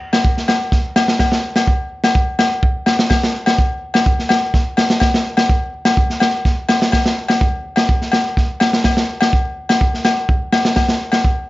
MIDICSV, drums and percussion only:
0, 0, Header, 1, 2, 480
1, 0, Start_track
1, 0, Tempo, 478469
1, 1195, Time_signature, 4, 2, 24, 8
1, 11534, End_track
2, 0, Start_track
2, 0, Title_t, "Drums"
2, 128, Note_on_c, 9, 68, 73
2, 132, Note_on_c, 9, 38, 74
2, 229, Note_off_c, 9, 68, 0
2, 233, Note_off_c, 9, 38, 0
2, 246, Note_on_c, 9, 36, 89
2, 347, Note_off_c, 9, 36, 0
2, 376, Note_on_c, 9, 38, 28
2, 476, Note_off_c, 9, 38, 0
2, 482, Note_on_c, 9, 68, 72
2, 488, Note_on_c, 9, 38, 68
2, 582, Note_off_c, 9, 68, 0
2, 588, Note_off_c, 9, 38, 0
2, 721, Note_on_c, 9, 38, 29
2, 724, Note_on_c, 9, 36, 93
2, 821, Note_off_c, 9, 38, 0
2, 824, Note_off_c, 9, 36, 0
2, 963, Note_on_c, 9, 38, 77
2, 963, Note_on_c, 9, 68, 78
2, 1063, Note_off_c, 9, 38, 0
2, 1064, Note_off_c, 9, 68, 0
2, 1086, Note_on_c, 9, 38, 72
2, 1186, Note_off_c, 9, 38, 0
2, 1197, Note_on_c, 9, 38, 73
2, 1202, Note_on_c, 9, 36, 103
2, 1205, Note_on_c, 9, 68, 71
2, 1297, Note_off_c, 9, 38, 0
2, 1302, Note_off_c, 9, 36, 0
2, 1305, Note_off_c, 9, 68, 0
2, 1322, Note_on_c, 9, 38, 76
2, 1422, Note_off_c, 9, 38, 0
2, 1562, Note_on_c, 9, 38, 72
2, 1567, Note_on_c, 9, 68, 69
2, 1662, Note_off_c, 9, 38, 0
2, 1668, Note_off_c, 9, 68, 0
2, 1680, Note_on_c, 9, 36, 99
2, 1780, Note_off_c, 9, 36, 0
2, 2043, Note_on_c, 9, 38, 72
2, 2048, Note_on_c, 9, 68, 77
2, 2143, Note_off_c, 9, 38, 0
2, 2148, Note_off_c, 9, 68, 0
2, 2158, Note_on_c, 9, 36, 98
2, 2259, Note_off_c, 9, 36, 0
2, 2396, Note_on_c, 9, 38, 66
2, 2396, Note_on_c, 9, 68, 80
2, 2496, Note_off_c, 9, 68, 0
2, 2497, Note_off_c, 9, 38, 0
2, 2637, Note_on_c, 9, 36, 98
2, 2737, Note_off_c, 9, 36, 0
2, 2871, Note_on_c, 9, 68, 72
2, 2875, Note_on_c, 9, 38, 73
2, 2971, Note_off_c, 9, 68, 0
2, 2975, Note_off_c, 9, 38, 0
2, 3000, Note_on_c, 9, 38, 75
2, 3101, Note_off_c, 9, 38, 0
2, 3109, Note_on_c, 9, 68, 69
2, 3116, Note_on_c, 9, 36, 99
2, 3117, Note_on_c, 9, 38, 87
2, 3209, Note_off_c, 9, 68, 0
2, 3216, Note_off_c, 9, 36, 0
2, 3217, Note_off_c, 9, 38, 0
2, 3245, Note_on_c, 9, 38, 71
2, 3346, Note_off_c, 9, 38, 0
2, 3473, Note_on_c, 9, 68, 78
2, 3483, Note_on_c, 9, 38, 76
2, 3574, Note_off_c, 9, 68, 0
2, 3583, Note_off_c, 9, 38, 0
2, 3596, Note_on_c, 9, 36, 95
2, 3696, Note_off_c, 9, 36, 0
2, 3952, Note_on_c, 9, 68, 76
2, 3963, Note_on_c, 9, 38, 77
2, 4052, Note_off_c, 9, 68, 0
2, 4063, Note_off_c, 9, 38, 0
2, 4075, Note_on_c, 9, 36, 96
2, 4176, Note_off_c, 9, 36, 0
2, 4206, Note_on_c, 9, 38, 26
2, 4305, Note_on_c, 9, 68, 77
2, 4306, Note_off_c, 9, 38, 0
2, 4317, Note_on_c, 9, 38, 72
2, 4405, Note_off_c, 9, 68, 0
2, 4417, Note_off_c, 9, 38, 0
2, 4553, Note_on_c, 9, 38, 28
2, 4554, Note_on_c, 9, 36, 92
2, 4654, Note_off_c, 9, 36, 0
2, 4654, Note_off_c, 9, 38, 0
2, 4786, Note_on_c, 9, 68, 68
2, 4794, Note_on_c, 9, 38, 76
2, 4886, Note_off_c, 9, 68, 0
2, 4894, Note_off_c, 9, 38, 0
2, 4916, Note_on_c, 9, 38, 74
2, 5016, Note_off_c, 9, 38, 0
2, 5018, Note_on_c, 9, 68, 72
2, 5029, Note_on_c, 9, 38, 81
2, 5032, Note_on_c, 9, 36, 106
2, 5118, Note_off_c, 9, 68, 0
2, 5130, Note_off_c, 9, 38, 0
2, 5133, Note_off_c, 9, 36, 0
2, 5160, Note_on_c, 9, 38, 77
2, 5260, Note_off_c, 9, 38, 0
2, 5387, Note_on_c, 9, 68, 76
2, 5393, Note_on_c, 9, 38, 81
2, 5487, Note_off_c, 9, 68, 0
2, 5494, Note_off_c, 9, 38, 0
2, 5512, Note_on_c, 9, 36, 96
2, 5612, Note_off_c, 9, 36, 0
2, 5871, Note_on_c, 9, 38, 73
2, 5871, Note_on_c, 9, 68, 75
2, 5971, Note_off_c, 9, 38, 0
2, 5972, Note_off_c, 9, 68, 0
2, 5991, Note_on_c, 9, 36, 95
2, 6091, Note_off_c, 9, 36, 0
2, 6119, Note_on_c, 9, 38, 29
2, 6219, Note_off_c, 9, 38, 0
2, 6223, Note_on_c, 9, 68, 74
2, 6235, Note_on_c, 9, 38, 70
2, 6323, Note_off_c, 9, 68, 0
2, 6335, Note_off_c, 9, 38, 0
2, 6471, Note_on_c, 9, 38, 27
2, 6472, Note_on_c, 9, 36, 86
2, 6572, Note_off_c, 9, 38, 0
2, 6573, Note_off_c, 9, 36, 0
2, 6707, Note_on_c, 9, 68, 81
2, 6712, Note_on_c, 9, 38, 80
2, 6807, Note_off_c, 9, 68, 0
2, 6813, Note_off_c, 9, 38, 0
2, 6840, Note_on_c, 9, 38, 80
2, 6941, Note_off_c, 9, 38, 0
2, 6945, Note_on_c, 9, 68, 74
2, 6953, Note_on_c, 9, 38, 78
2, 6955, Note_on_c, 9, 36, 99
2, 7045, Note_off_c, 9, 68, 0
2, 7053, Note_off_c, 9, 38, 0
2, 7055, Note_off_c, 9, 36, 0
2, 7079, Note_on_c, 9, 38, 76
2, 7179, Note_off_c, 9, 38, 0
2, 7308, Note_on_c, 9, 68, 73
2, 7320, Note_on_c, 9, 38, 80
2, 7408, Note_off_c, 9, 68, 0
2, 7421, Note_off_c, 9, 38, 0
2, 7435, Note_on_c, 9, 36, 100
2, 7536, Note_off_c, 9, 36, 0
2, 7784, Note_on_c, 9, 68, 72
2, 7797, Note_on_c, 9, 38, 76
2, 7884, Note_off_c, 9, 68, 0
2, 7897, Note_off_c, 9, 38, 0
2, 7915, Note_on_c, 9, 36, 90
2, 8015, Note_off_c, 9, 36, 0
2, 8042, Note_on_c, 9, 38, 28
2, 8142, Note_off_c, 9, 38, 0
2, 8142, Note_on_c, 9, 68, 71
2, 8158, Note_on_c, 9, 38, 73
2, 8243, Note_off_c, 9, 68, 0
2, 8258, Note_off_c, 9, 38, 0
2, 8398, Note_on_c, 9, 36, 83
2, 8400, Note_on_c, 9, 38, 25
2, 8498, Note_off_c, 9, 36, 0
2, 8501, Note_off_c, 9, 38, 0
2, 8629, Note_on_c, 9, 68, 80
2, 8639, Note_on_c, 9, 38, 83
2, 8729, Note_off_c, 9, 68, 0
2, 8739, Note_off_c, 9, 38, 0
2, 8761, Note_on_c, 9, 38, 68
2, 8862, Note_off_c, 9, 38, 0
2, 8871, Note_on_c, 9, 38, 88
2, 8877, Note_on_c, 9, 36, 102
2, 8879, Note_on_c, 9, 68, 72
2, 8971, Note_off_c, 9, 38, 0
2, 8977, Note_off_c, 9, 36, 0
2, 8979, Note_off_c, 9, 68, 0
2, 8997, Note_on_c, 9, 38, 75
2, 9098, Note_off_c, 9, 38, 0
2, 9235, Note_on_c, 9, 68, 80
2, 9248, Note_on_c, 9, 38, 77
2, 9335, Note_off_c, 9, 68, 0
2, 9348, Note_off_c, 9, 38, 0
2, 9360, Note_on_c, 9, 36, 99
2, 9461, Note_off_c, 9, 36, 0
2, 9724, Note_on_c, 9, 68, 71
2, 9729, Note_on_c, 9, 38, 74
2, 9824, Note_off_c, 9, 68, 0
2, 9830, Note_off_c, 9, 38, 0
2, 9842, Note_on_c, 9, 36, 88
2, 9943, Note_off_c, 9, 36, 0
2, 9974, Note_on_c, 9, 38, 25
2, 10074, Note_off_c, 9, 38, 0
2, 10079, Note_on_c, 9, 38, 72
2, 10079, Note_on_c, 9, 68, 79
2, 10179, Note_off_c, 9, 68, 0
2, 10180, Note_off_c, 9, 38, 0
2, 10322, Note_on_c, 9, 36, 93
2, 10422, Note_off_c, 9, 36, 0
2, 10559, Note_on_c, 9, 38, 75
2, 10559, Note_on_c, 9, 68, 81
2, 10659, Note_off_c, 9, 38, 0
2, 10659, Note_off_c, 9, 68, 0
2, 10684, Note_on_c, 9, 38, 82
2, 10784, Note_off_c, 9, 38, 0
2, 10795, Note_on_c, 9, 38, 78
2, 10797, Note_on_c, 9, 68, 66
2, 10802, Note_on_c, 9, 36, 109
2, 10895, Note_off_c, 9, 38, 0
2, 10898, Note_off_c, 9, 68, 0
2, 10902, Note_off_c, 9, 36, 0
2, 10920, Note_on_c, 9, 38, 72
2, 11020, Note_off_c, 9, 38, 0
2, 11152, Note_on_c, 9, 68, 79
2, 11163, Note_on_c, 9, 38, 70
2, 11253, Note_off_c, 9, 68, 0
2, 11263, Note_off_c, 9, 38, 0
2, 11281, Note_on_c, 9, 36, 93
2, 11382, Note_off_c, 9, 36, 0
2, 11534, End_track
0, 0, End_of_file